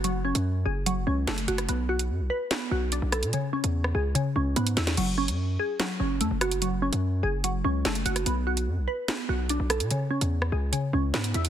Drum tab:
CC |----------------|----------------|----------------|x---------------|
HH |x--x----x---xxxx|x--x----x---x-xx|x--x----x---xxxx|x--x----x---x-xx|
CP |------------x---|--------x-------|----------------|--------x-------|
SD |------------o--r|--------o-----r-|-----r--------oo|--------o-----r-|

CC |----------------|----------------|----------------|
HH |x--x----x---xxxx|x--x----x---x-xx|x--x----x---xxxx|
CP |------------x---|--------x-------|------------x---|
SD |------------o--r|--------o-----r-|-----r------o---|